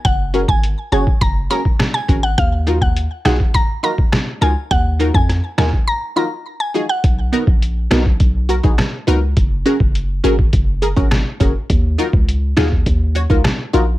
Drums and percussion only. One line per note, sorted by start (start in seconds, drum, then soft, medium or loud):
0.05 kick loud
0.05 closed hi-hat medium
0.34 closed hi-hat medium
0.48 kick loud
0.64 closed hi-hat medium
0.92 closed hi-hat soft
1.07 kick medium
1.21 kick loud
1.21 closed hi-hat medium
1.51 closed hi-hat medium
1.65 kick medium
1.79 cross-stick medium
1.79 snare loud
1.79 closed hi-hat medium
2.09 kick medium
2.09 closed hi-hat medium
2.38 kick loud
2.38 closed hi-hat medium
2.67 closed hi-hat medium
2.81 kick loud
2.97 closed hi-hat medium
3.25 cross-stick medium
3.25 snare loud
3.25 closed hi-hat medium
3.40 kick medium
3.54 kick medium
3.54 closed hi-hat medium
3.84 closed hi-hat medium
3.98 kick medium
4.12 cross-stick medium
4.12 snare loud
4.12 closed hi-hat medium
4.42 closed hi-hat medium
4.71 kick loud
4.71 closed hi-hat medium
5.00 closed hi-hat medium
5.14 kick loud
5.29 cross-stick medium
5.29 closed hi-hat medium
5.58 cross-stick medium
5.58 snare loud
5.58 closed hi-hat soft
5.73 kick medium
7.04 kick loud
7.04 closed hi-hat medium
7.33 closed hi-hat medium
7.47 kick loud
7.62 closed hi-hat medium
7.91 cross-stick medium
7.91 snare loud
7.91 closed hi-hat soft
8.06 kick medium
8.20 kick loud
8.20 closed hi-hat medium
8.49 closed hi-hat medium
8.64 kick medium
8.78 cross-stick medium
8.78 snare loud
8.78 closed hi-hat medium
9.08 closed hi-hat medium
9.37 kick loud
9.37 closed hi-hat medium
9.66 closed hi-hat medium
9.80 kick loud
9.95 closed hi-hat medium
10.24 closed hi-hat medium
10.39 kick medium
10.53 kick loud
10.53 closed hi-hat medium
10.82 closed hi-hat medium
10.97 kick medium
11.11 cross-stick medium
11.11 snare loud
11.11 closed hi-hat medium
11.41 kick medium
11.41 closed hi-hat medium
11.70 kick loud
11.70 closed hi-hat medium
11.99 closed hi-hat medium
12.13 kick loud
12.29 closed hi-hat medium
12.57 cross-stick medium
12.57 snare loud
12.57 closed hi-hat soft
12.72 kick medium
12.86 kick loud
12.86 closed hi-hat medium
13.16 closed hi-hat medium
13.30 kick loud
13.44 cross-stick medium
13.44 cross-stick loud
13.44 snare loud
13.44 closed hi-hat medium
13.74 closed hi-hat medium